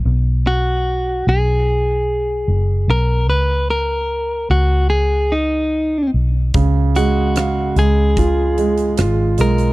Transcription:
<<
  \new Staff \with { instrumentName = "Clean electric guitar" } { \time 4/4 \key cis \mixolydian \tempo 4 = 74 r8 fis'4 gis'2 ais'8 | b'8 ais'4 fis'8 gis'8 dis'4 r8 | r8 fis'4 gis'2 ais'8 | }
  \new Staff \with { instrumentName = "Grand piano" } { \clef bass \time 4/4 \key cis \mixolydian r1 | r1 | cis8 gis8 eis''8 gis8 eis'8 gis8 eis'8 gis8 | }
  \new Staff \with { instrumentName = "Fingered electric bass" } { \clef bass \time 4/4 \key cis \mixolydian b,,4. b,,4. fis,,8 b,,8 | cis,4. cis,2 b,,8 | cis,4. cis,4. gis,,8 b,,8 | }
  \new DrumStaff \with { instrumentName = "Drums" } \drummode { \time 4/4 r4 r4 r4 r4 | r4 r4 r4 r4 | <hh bd>8 hh8 <hh ss>8 hh8 <hh bd>8 hh16 hh16 <hh ss>8 hh16 hh16 | }
>>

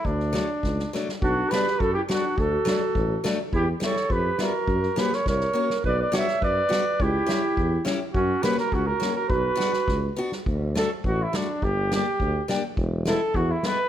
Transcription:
<<
  \new Staff \with { instrumentName = "Flugelhorn" } { \time 2/4 \key d \major \tempo 4 = 104 d'4. r8 | \key b \minor fis'8 b'8 a'16 g'16 fis'8 | a'4. r8 | g'8 cis''8 b'8 ais'8~ |
ais'8 b'16 cis''16 cis''4 | d''16 d''16 e''8 d''4 | g'4. r8 | fis'8 b'16 ais'16 fis'16 ais'8 ais'16 |
b'4. r8 | \key d \major r8 a'8 fis'16 e'16 d'8 | g'8 g'4 r8 | r8 a'8 fis'16 e'16 b'8 | }
  \new Staff \with { instrumentName = "Clarinet" } { \time 2/4 \key d \major r2 | \key b \minor d'8 g'8 fis'16 e'16 d'8 | fis'4. r8 | e'8 a'8 g'8 fis'8~ |
fis'8 g'16 ais'16 ais'4 | b'16 b'16 cis''8 b'4 | e'4. r8 | cis'8 g'16 fis'16 cis'16 fis'8 fis'16 |
fis'4. r8 | \key d \major r2 | r2 | r2 | }
  \new Staff \with { instrumentName = "Steel-string acoustic guitar" } { \time 2/4 \key d \major r8 <fis a d'>8 r8 <fis a d'>8 | \key b \minor r8 <fis b d'>8 r8 <fis b d'>8 | r8 <fis a d'>8 r8 <fis a d'>8 | r8 <g b e'>8 r8 <g b e'>8 |
r8 <ais cis' fis'>8 r8 <ais cis' fis'>8 | r8 <b d' fis'>8 r8 <b d' fis'>8 | r8 <cis' e' g'>8 r8 <cis' e' g'>8 | r8 <ais cis' fis'>8 r8 <ais cis' fis'>8 |
r8 <b d' fis'>8 r8 <b d' fis'>8 | \key d \major r8 <a d' fis'>8 r8 <a d' fis'>8 | r8 <bes d' g'>8 r8 <bes d' g'>8 | r8 <gis b e'>8 r8 <gis b e'>8 | }
  \new Staff \with { instrumentName = "Tuba" } { \clef bass \time 2/4 \key d \major d,4 cis,8 r8 | \key b \minor b,,8 r8 fis,8 r8 | d,8 r8 a,,8 r8 | e,8 r8 eis,8 r8 |
fis,8 r8 c,8 r8 | b,,8 r8 fis,8 r8 | cis,8 r8 e,8 r8 | fis,8 r8 cis,8 r8 |
b,,8 r8 cis,8 r8 | \key d \major d,4 a,,8 r8 | g,,4 d,8 r8 | e,,4 e,8 r8 | }
  \new DrumStaff \with { instrumentName = "Drums" } \drummode { \time 2/4 bd16 sn16 sn8 <bd sn>16 sn16 sn16 sn16 | bd8 sn16 sn16 bd8 sn8 | bd8 sn8 bd8 sn8 | bd8 sn16 sn16 bd8 sn8 |
bd16 sn16 sn16 sn16 <bd sn>16 sn8 sn16 | bd8 sn16 sn16 bd8 sn8 | bd8 sn8 bd8 sn8 | bd8 sn16 sn16 bd8 sn8 |
bd8 sn16 sn16 <bd sn>8. sn16 | <cymc bd>8 sn8 bd8 sn8 | bd8 sn8 bd8 sn8 | bd8 sn8 bd8 sn8 | }
>>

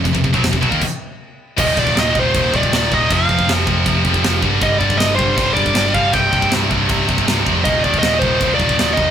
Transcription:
<<
  \new Staff \with { instrumentName = "Lead electric guitar" } { \time 4/4 \key ees \major \tempo 4 = 158 r1 | ees''8 d''8 ees''8 c''4 d''8 d''8 ees''8 | f''4 r2. | ees''8 d''8 ees''8 c''4 d''4 f''8 |
g''4 r2. | ees''8 d''8 ees''8 c''4 d''4 ees''8 | }
  \new Staff \with { instrumentName = "Distorted electric guitar" } { \clef bass \time 4/4 \key ees \major <f, c>16 <f, c>16 <f, c>16 <b, fis>16 <f, c>16 <f, c>16 <b, fis>16 <ees bes>16 r2 | <ees, bes, ees>8 <ees, bes, ees>8 <ees, bes, ees>8 <ees, bes, ees>8 <ees, bes, ees>8 <ees, bes, ees>8 <ees, bes, ees>8 <ees, bes, ees>8 | <f, c f>8 <f, c f>8 <f, c f>8 <f, c f>8 <f, c f>8 <f, c f>8 <f, c f>8 <g, d g>8 | <g, d g>8 <g, d g>8 <g, d g>8 <g, d g>8 <g, d g>8 <g, d g>8 <g, d g>8 <g, d g>8 |
<c, g, c>8 <c, g, c>8 <c, g, c>8 <c, g, c>8 <c, g, c>8 <c, g, c>8 <c, g, c>8 <c, g, c>8 | <ees, bes, ees>8 <ees, bes, ees>8 <ees, bes, ees>8 <ees, bes, ees>8 <ees, bes, ees>8 <ees, bes, ees>8 <ees, bes, ees>8 <ees, bes, ees>8 | }
  \new Staff \with { instrumentName = "Distorted electric guitar" } { \clef bass \time 4/4 \key ees \major <f, c>16 <f, c>16 <f, c>16 <b, fis>16 <f, c>16 <f, c>16 <b, fis>16 <ees bes>16 r2 | <ees, bes, ees>8 <ees, bes, ees>8 <ees, bes, ees>8 <ees, bes, ees>8 <ees, bes, ees>8 <ees, bes, ees>8 <ees, bes, ees>8 <ees, bes, ees>8 | <f, c f>8 <f, c f>8 <f, c f>8 <f, c f>8 <f, c f>8 <f, c f>8 <f, c f>8 <g, d g>8 | <g, d g>8 <g, d g>8 <g, d g>8 <g, d g>8 <g, d g>8 <g, d g>8 <g, d g>8 <g, d g>8 |
<c, g, c>8 <c, g, c>8 <c, g, c>8 <c, g, c>8 <c, g, c>8 <c, g, c>8 <c, g, c>8 <c, g, c>8 | <ees, bes, ees>8 <ees, bes, ees>8 <ees, bes, ees>8 <ees, bes, ees>8 <ees, bes, ees>8 <ees, bes, ees>8 <ees, bes, ees>8 <ees, bes, ees>8 | }
  \new Staff \with { instrumentName = "Picked electric bass" } { \clef bass \time 4/4 \key ees \major f,,16 f,,16 f,,16 b,,16 f,,16 f,,16 b,,16 ees,16 r2 | ees,,8 ees,,8 ees,,8 ees,,8 ees,,8 ees,,8 ees,,8 ees,,8 | f,,8 f,,8 f,,8 f,,8 f,,8 f,,8 f,,8 g,,8 | g,,8 g,,8 g,,8 g,,8 g,,8 g,,8 g,,8 g,,8 |
c,,8 c,,8 c,,8 c,,8 c,,8 c,,8 c,,8 f,,8 | ees,,8 ees,,8 ees,,8 ees,,8 ees,,8 ees,,8 ees,,8 e,,8 | }
  \new DrumStaff \with { instrumentName = "Drums" } \drummode { \time 4/4 <cymc bd>16 bd16 bd16 bd16 <cymc sn>16 bd16 bd16 bd16 <cymc bd>4 r4 | <cymc bd>8 bd16 bd16 <cymc sn>8 bd8 <cymc bd>8 bd16 bd16 <cymc sn>8 bd8 | <cymc bd>8 bd16 bd16 <cymc sn>8 bd8 <cymc bd>8 bd16 bd16 <cymc sn>8 bd8 | <cymc bd>8 bd16 bd16 <cymc sn>8 bd8 <cymc bd>8 bd16 bd16 <cymc sn>8 bd8 |
<cymc bd>8 bd16 bd16 <cymc sn>8 bd8 <cymc bd>8 bd16 bd16 <cymc sn>8 bd8 | <cymc bd>8 bd16 bd16 <cymc sn>8 bd8 <cymc bd>8 bd16 bd16 <cymc sn>8 bd8 | }
>>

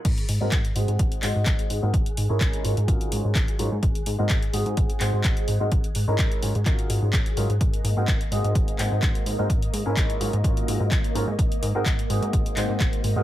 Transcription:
<<
  \new Staff \with { instrumentName = "String machine" } { \time 4/4 \key aes \mixolydian \tempo 4 = 127 <aes' ges'''>1~ | <aes' ges'''>1~ | <aes' ges'''>1~ | <aes' ges'''>1 |
<bes ees''>1~ | <bes ees''>1~ | <bes ees''>1 | }
  \new Staff \with { instrumentName = "Grand piano" } { \time 4/4 \key aes \mixolydian r8. <aes c' ees' ges' bes'>16 r8 <aes c' ees' ges' aes'>4 <aes c' ees' ges' c''>4~ <aes c' ees' ges' c''>16 <aes c' ees' ges' bes'>16 | r8. <aes des' ees' fes' bes'>8. <ges des' ees' f' bes'>16 r16 <ges des' ees' f' bes'>4. <ges des' ees' f' bes'>16 r16 | r8. <aes c' ees' ges' bes'>16 r8 <aes c' ees' ges' aes'>4 <aes c' ees' ges' c''>4~ <aes c' ees' ges' c''>16 <aes c' ees' ges' bes'>16 | r8. <aes des' ees' fes' bes'>8. <ges des' ees' f' bes'>16 r16 <ges des' ees' f' bes'>4. <ges des' ees' f' bes'>16 r16 |
r8. <aes c' ees' ges' bes'>16 r8 <aes c' ees' ges' aes'>4 <aes c' ees' ges' c''>4~ <aes c' ees' ges' c''>16 <aes c' ees' ges' bes'>16 | r8. <aes des' ees' fes' bes'>8. <ges des' ees' f' bes'>16 r16 <ges des' ees' f' bes'>4. <ges des' ees' f' bes'>16 r16 | r8. <aes c' ees' ges' bes'>16 r8 <aes c' ees' ges' aes'>4 <aes c' ees' ges' c''>4~ <aes c' ees' ges' c''>16 <aes c' ees' ges' bes'>16 | }
  \new Staff \with { instrumentName = "Analog synth bass" } { \clef bass \time 4/4 \key aes \mixolydian aes,,8 aes,16 aes,16 r8 aes,16 aes,16 aes,,8 aes,16 aes,16 aes,,16 r16 aes,16 aes,16 | aes,,8 aes,16 aes,16 aes,,8 aes,16 aes,16 aes,,8 aes,16 aes,16 aes,,16 r16 aes,16 aes,16 | aes,,8 aes,16 aes,16 aes,,8 aes,16 aes,16 aes,,8 aes,16 aes,16 aes,,16 r16 aes,16 aes,16 | aes,,8 aes,16 aes,16 aes,,8 aes,16 aes,16 aes,,8 aes,16 aes,16 aes,,16 r16 aes,16 aes,16 |
aes,,8 aes,16 aes,16 aes,,8 aes,16 aes,16 aes,,8 aes,16 aes,16 aes,,16 r16 aes,16 aes,16 | aes,,8 aes,16 aes,16 aes,,8 aes,16 aes,16 aes,,8 aes,16 aes,16 aes,,16 r16 aes,16 aes,16 | aes,,8 aes,16 aes,16 aes,,8 aes,16 aes,16 aes,,8 aes,16 aes,16 aes,,16 r16 aes,16 aes,16 | }
  \new DrumStaff \with { instrumentName = "Drums" } \drummode { \time 4/4 <cymc hh bd>16 hh16 hho8 <hc hh bd>16 hh16 hho16 hh16 <hh bd>16 hh16 <hc hho>8 <hc hh bd>16 hh16 hho8 | <hh bd>16 hh16 hho8 <hc hh bd>16 hh16 hho16 hh16 <hh bd>16 hh16 hho8 <hc hh bd>16 hh16 hho8 | <hh bd>16 hh16 hho8 <hc hh bd>16 hh16 hho16 hh16 <hh bd>16 hh16 <hc hho>8 <hc hh bd>16 hh16 hho8 | <hh bd>16 hh16 hho8 <hc hh bd>16 hh16 hho16 hh16 <hc hh bd>16 hh16 hho8 <hc hh bd>16 hh16 hho16 hh16 |
<hh bd>16 hh16 hho8 <hc hh bd>16 hh16 hho16 hh16 <hh bd>16 hh16 <hc hho>8 <hc hh bd>16 hh16 hho8 | <hh bd>16 hh16 hho8 <hc hh bd>16 hh16 hho16 hh16 <hh bd>16 hh16 hho8 <hc hh bd>16 hh16 hho8 | <hh bd>16 hh16 hho8 <hc hh bd>16 hh16 hho16 hh16 <hh bd>16 hh16 <hc hho>8 <hc hh bd>16 hh16 hho8 | }
>>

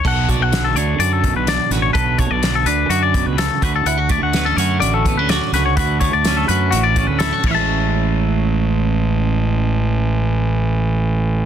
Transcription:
<<
  \new Staff \with { instrumentName = "Clean electric guitar" } { \time 4/4 \key a \major \tempo 4 = 126 fis''8 d''16 fis''8 a'16 cis''8 d''16 a'8 b'16 d''8 b'16 cis''16 | b'8 cis''16 d''8 a'16 b'8 fis'16 d''8 b'16 a'8 b'16 a'16 | fis''8 d''16 fis''8 a'16 cis''8 d''16 a'8 b'16 d''8 b'16 cis''16 | b'8 cis''16 d''8 a'16 b'8 fis'16 d''8 b'16 a'8 <cis'' e'' a''>8~ |
<cis'' e'' a''>1~ | <cis'' e'' a''>1 | }
  \new Staff \with { instrumentName = "Clean electric guitar" } { \time 4/4 \key a \major << { a'8 fis'4 d'8 fis'4 d'8 fis'8 | a'8 fis'4 d'8 fis'4. fis'8 | e'16 fis'8. b16 cis'16 fis'4 b16 cis'16 fis'8 fis'8 | fis'4 cis'8 fis'4 cis'8 e'16 fis'16 <e gis cis'>8~ |
<e gis cis'>1~ | <e gis cis'>1 | } \\ { b,4 d4. b,4. | b,4 d4. b,8 cis8 d8~ | d8 a4. a,4. d8~ | d8 a4. a,4. a,8~ |
a,1~ | a,1 | } >> }
  \new Staff \with { instrumentName = "Fingered electric bass" } { \clef bass \time 4/4 \key a \major b,,8. b,,8. d,8 fis,8. b,,8 r16 a,,8 | b,,8. b,,8. d,8 fis,8. cis,8 r16 d,8 | d,8. d,8. fis,8 a,,8. d,8 r16 cis,8 | d,8. d,8. fis,8 a,,8. d,8 r16 a,,8~ |
a,,1~ | a,,1 | }
  \new DrumStaff \with { instrumentName = "Drums" } \drummode { \time 4/4 <cymc bd>8 <hh bd>8 <hh sn>8 hh8 hh8 <hh bd>8 <hh sn>8 <hh sn>8 | <hh bd>8 <hh bd>8 <hh sn>8 hh8 hh8 <hh bd>8 <hh sn>8 <hh bd>8 | hh8 <hh bd>8 <hh sn>8 hh8 hh8 <hh bd>8 <hh sn>8 <hh sn>8 | <hh bd>8 <hh bd>8 <hh sn>8 hh8 hh8 <hh bd>8 <hh sn>8 <cymc bd>8 |
r4 r4 r4 r4 | r4 r4 r4 r4 | }
>>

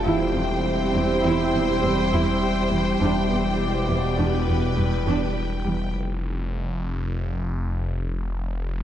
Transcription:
<<
  \new Staff \with { instrumentName = "Violin section" } { \time 5/4 \key e \phrygian \tempo 4 = 102 << { g''1~ g''4~ | g''1~ g''4 | r1 r4 | } \\ { c''1~ c''4~ | c''2 b'2. | r1 r4 | } >> }
  \new Staff \with { instrumentName = "Synth drone" } { \time 5/4 \key e \phrygian << { <c' c''>1~ <c' c''>4 | <b, d''>1~ <b, d''>4 | r1 r4 | } \\ { <g e'>1~ <g e'>4~ | <g e'>1~ <g e'>4 | r1 r4 | } >> }
  \new Staff \with { instrumentName = "Viola section" } { \time 5/4 \key e \phrygian << { g'1~ g'4~ | g'1~ g'4 | r1 r4 | } \\ { e'8 c'8 r8 c'8 e'8 c'8 g8 e'8 r8 g8 | d'8 b8 r8 b8 d'8 b8 g8 d'8 r8 g8 | r1 r4 | } >> }
  \new Staff \with { instrumentName = "Cello section" } { \clef bass \time 5/4 \key e \phrygian e,8 e,8 r8 e,8 e,8 e,8 e,8 e,8 r8 e,8 | e,8 e,8 r8 e,8 e,8 e,8 e,8 e,8 r8 e,8 | r1 r4 | }
  \new Staff \with { instrumentName = "Detuned saw bass" } { \clef bass \time 5/4 \key e \phrygian e,,1~ e,,4 | e,,1~ e,,4 | f,,1~ f,,4 | }
>>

